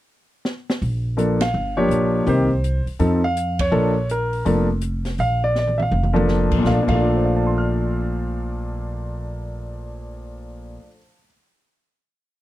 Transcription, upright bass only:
0.82 A#1
1.54 G1
1.88 A#1
2.26 C2
2.86 muted upright bass stroke
3.00 F2
3.72 A#1
4.46 F1
5.18 A#1
5.91 F1
6.51 A1
6.65 A#1
6.88 A#1

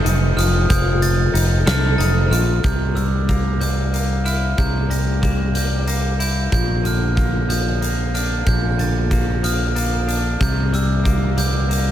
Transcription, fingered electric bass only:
0.05 F1
0.37 F1
0.70 F1
1.34 F1
1.66 C2
1.99 F1
2.31 A#1
2.64 C2
4.58 C2
6.52 A#1
8.47 A#1
10.41 C2

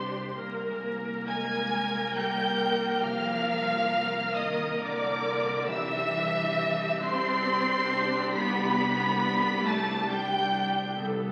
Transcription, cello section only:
Already playing: C3
1.26 G#3
2.15 G3
3.04 F3
4.36 D#3
4.80 D3
5.68 E3
7.04 C4
8.36 B3
9.67 A3
10.11 G3

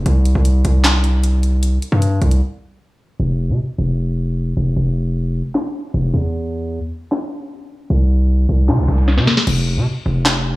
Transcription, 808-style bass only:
0.06 C2
0.35 C2
0.65 C2
1.92 G2
2.22 C2
3.20 F1
3.49 C3
3.78 F1
4.57 F1
4.76 F1
5.94 F1
6.14 E2
7.90 C2
8.49 C2
8.69 C3
8.78 C2
8.88 C2
9.18 C3
9.47 F1
9.76 C3
10.06 F1

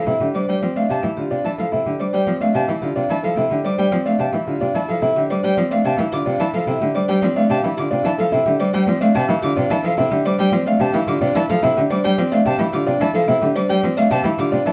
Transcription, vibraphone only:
Already playing: A4
0.08 E5
0.34 C5
0.49 D5
0.75 E5
0.89 F5
1.17 G4
1.30 F5
1.58 A4
1.72 E5
1.99 C5
2.13 D5
2.41 E5
2.55 F5
2.82 G4
2.96 F5
3.23 A4
3.37 E5
3.65 C5
3.78 D5
4.06 E5
4.19 F5
4.48 G4
4.60 F5
4.89 A4
5.02 E5
5.29 C5
5.43 D5
5.71 E5
5.85 F5
6.12 G4
6.26 F5
6.54 A4
6.68 E5
6.95 C5
7.08 D5
7.36 E5
7.50 F5
7.77 G4
7.91 F5
8.19 A4
8.33 E5
8.60 C5
8.73 D5
9.01 E5
9.15 F5
9.42 G4
9.56 F5
9.84 A4
9.98 E5
10.26 C5
10.40 D5
10.67 E5
10.81 F5
11.08 G4
11.22 F5
11.49 A4
11.63 E5
11.91 C5
12.04 D5
12.31 E5
12.72 G4
12.87 F5
13.14 A4
13.28 E5
13.55 C5
13.69 D5
13.97 E5
14.11 F5
14.38 G4
14.52 F5

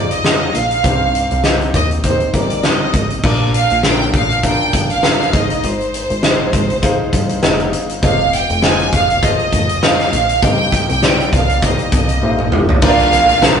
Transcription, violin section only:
Already playing: D5
0.12 D#5
0.55 F5
1.76 D#5
2.05 C5
2.36 D5
2.65 D#5
3.25 D5
3.55 F5
3.85 G5
4.16 F5
4.46 G5
4.92 F5
5.36 D#5
5.66 C5
8.04 F5
8.33 G5
8.64 G#5
8.94 F5
9.24 D#5
9.84 F5
10.44 G5
10.90 G5
11.34 F5
11.65 D#5
12.85 F5

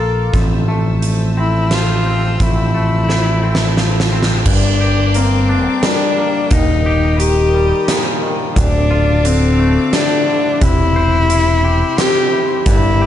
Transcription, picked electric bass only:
Already playing: A#1
0.34 A1
2.40 A1
4.46 G1
6.51 D#1
8.57 D1
10.62 E1
12.66 G1

